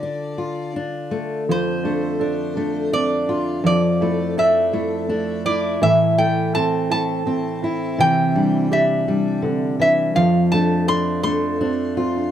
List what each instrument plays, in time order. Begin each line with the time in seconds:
Already playing: steel-string acoustic guitar D3 F4, resonator guitar played with a steel bar D5
0.03 steel-string acoustic guitar D4
0.38 steel-string acoustic guitar F4
0.76 steel-string acoustic guitar D4
1.11 steel-string acoustic guitar A3
1.49 steel-string acoustic guitar F2, felt piano F3, resonator guitar played with a steel bar C5
1.83 steel-string acoustic guitar A3, felt piano D4
2.20 steel-string acoustic guitar D4, felt piano A4
2.55 steel-string acoustic guitar A3, felt piano D4
2.92 felt piano C4, steel-string acoustic guitar D4, resonator guitar played with a steel bar D5
3.28 felt piano D4, steel-string acoustic guitar F4
3.64 steel-string acoustic guitar F2, felt piano F3, resonator guitar played with a steel bar D5
4.01 steel-string acoustic guitar A3, felt piano E4
4.37 steel-string acoustic guitar D4, felt piano A4, resonator guitar played with a steel bar E5
4.73 steel-string acoustic guitar A3, felt piano E4
5.08 felt piano A3, steel-string acoustic guitar D4
5.45 felt piano E4, steel-string acoustic guitar E4, resonator guitar played with a steel bar D5
5.82 steel-string acoustic guitar A2, felt piano E3, resonator guitar played with a steel bar E5
6.18 steel-string acoustic guitar A3, felt piano E4, resonator guitar played with a steel bar G5
6.54 steel-string acoustic guitar C4, felt piano A4, resonator guitar played with a steel bar A5
6.90 steel-string acoustic guitar A3, felt piano E4, resonator guitar played with a steel bar A5
7.26 felt piano C4, steel-string acoustic guitar C4
7.62 felt piano E4, steel-string acoustic guitar E4
7.98 steel-string acoustic guitar C3, felt piano E3, resonator guitar played with a steel bar G5
8.35 steel-string acoustic guitar G3, felt piano D4
8.71 steel-string acoustic guitar D4, felt piano G4, resonator guitar played with a steel bar E5
9.08 steel-string acoustic guitar G3, felt piano D4
9.42 steel-string acoustic guitar D3, felt piano C4
9.80 steel-string acoustic guitar E3, felt piano D4, resonator guitar played with a steel bar E5
10.15 steel-string acoustic guitar F2, felt piano F3, resonator guitar played with a steel bar F5
10.52 steel-string acoustic guitar A3, felt piano D4, resonator guitar played with a steel bar A5
10.88 steel-string acoustic guitar D4, felt piano A4, resonator guitar played with a steel bar C6
11.23 steel-string acoustic guitar A3, felt piano D4, resonator guitar played with a steel bar C6
11.61 felt piano C4, steel-string acoustic guitar D4
11.97 felt piano C4, steel-string acoustic guitar F4
12.16 felt piano D4